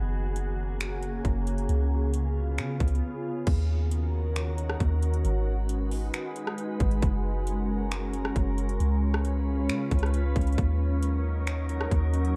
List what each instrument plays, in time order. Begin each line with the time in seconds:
Already playing: 808-style bass F#1, ambient pad C#3 A#3 F#4 G#4
0.36 closed hi-hat
0.80 finger snap, closed hi-hat
1.03 closed hi-hat
1.25 808-style bass F#1, kick, closed hi-hat
1.47 closed hi-hat
1.58 closed hi-hat
1.69 808-style bass C#2, ambient pad B3 F4, closed hi-hat
2.14 closed hi-hat
2.58 808-style bass C#3, finger snap, closed hi-hat
2.80 808-style bass C#2, kick, closed hi-hat
2.88 closed hi-hat
2.95 closed hi-hat
3.47 808-style bass D#2, ambient pad D#3 C#4 F#4 A#4, kick, closed hi-hat, crash
3.91 closed hi-hat
4.36 finger snap, closed hi-hat
4.58 closed hi-hat
4.70 cross-stick
4.80 808-style bass D#2, kick, closed hi-hat
5.02 closed hi-hat
5.14 closed hi-hat
5.25 808-style bass G#1, ambient pad G#3 D#4 B4, closed hi-hat
5.69 closed hi-hat
5.91 open hi-hat
6.14 finger snap, closed hi-hat
6.36 closed hi-hat
6.47 cross-stick
6.58 closed hi-hat
6.80 808-style bass G#1, kick, closed hi-hat
6.91 closed hi-hat
7.02 808-style bass F#1, ambient pad C#4 A#4, kick, closed hi-hat
7.47 closed hi-hat
7.91 finger snap, closed hi-hat
8.14 closed hi-hat
8.25 cross-stick
8.36 808-style bass F#1, kick, closed hi-hat
8.58 closed hi-hat
8.69 closed hi-hat
8.80 808-style bass C#2, ambient pad C#4 F4 B4, closed hi-hat
9.14 cross-stick
9.25 closed hi-hat
9.69 808-style bass C#3, finger snap, closed hi-hat
9.91 808-style bass C#2, kick, closed hi-hat
9.99 closed hi-hat
10.03 cross-stick, closed hi-hat
10.14 closed hi-hat
10.36 808-style bass C#2, kick, closed hi-hat
10.41 closed hi-hat
10.47 closed hi-hat
10.53 closed hi-hat
10.58 808-style bass D#2, ambient pad F#3 C#4 D#4 A#4, kick, closed hi-hat
11.03 closed hi-hat
11.47 finger snap, closed hi-hat
11.69 closed hi-hat
11.81 cross-stick
11.91 808-style bass D#2, kick, closed hi-hat
12.14 closed hi-hat
12.25 closed hi-hat